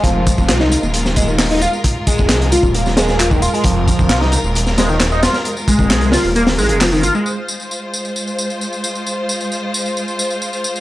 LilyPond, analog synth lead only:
\new Staff \with { instrumentName = "Analog synth lead" } { \clef bass \time 4/4 \key f \minor \tempo 4 = 133 f4 f'16 ees'16 r4 aes16 ees16 r16 ees'16 f'16 r16 | r8 aes4 f'16 r16 bes16 r16 aes8 f16 ees16 f'16 aes16 | f4 f'16 ees'16 r4 aes16 ees16 r16 ees'16 f'16 r16 | r8 aes4 f'16 r16 bes16 r16 aes8 f16 ees16 f'16 aes16 |
r1 | r1 | }